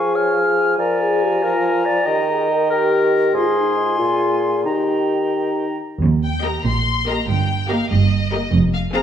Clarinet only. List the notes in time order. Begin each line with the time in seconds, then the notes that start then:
Already playing: F5
0.15 C#5
0.79 D5
1.43 A#4
1.85 D5
2.06 D#5
2.70 A#4
3.35 G#4
3.98 F4
4.66 D#4